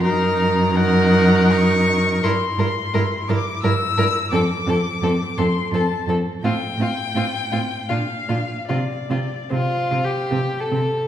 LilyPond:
<<
  \new Staff \with { instrumentName = "Violin" } { \time 3/4 \key ees \dorian \tempo 4 = 84 bes''4 ges''4 des'''4 | \key f \major c'''4. d'''8 e'''4 | d'''4. c'''8 a''8 r8 | g''2 f''4 |
d''4 c''4 r4 | }
  \new Staff \with { instrumentName = "Violin" } { \time 3/4 \key ees \dorian bes'4 bes'2 | \key f \major bes'8 bes'8 bes'8 bes'8 bes'8 bes'8 | a'8 a'8 a'8 a'8 a'8 a'8 | f'8 f'8 f'8 f'8 f'8 f'8 |
f'8 f'8 \tuplet 3/2 { f'4 g'8~ g'8 a'4 } | }
  \new Staff \with { instrumentName = "Viola" } { \time 3/4 \key ees \dorian ees'4 ees'2 | \key f \major e'8 e'8 e'8 e'8 e'8 e'8 | c'8 c'8 c'8 c'8 c'8 c'8 | c'8 c'8 c'8 c'8 d'8 d'8 |
c'8 c'8 c'8 c'8 c'8 c'8 | }
  \new Staff \with { instrumentName = "Cello" } { \clef bass \time 3/4 \key ees \dorian ges,2. | \key f \major g,8 g,8 g,8 g,8 g,8 g,8 | f,8 f,8 f,8 f,8 f,8 f,8 | a,8 a,8 a,8 a,8 bes,8 bes,8 |
c8 c8 c8 c8 c8 c8 | }
>>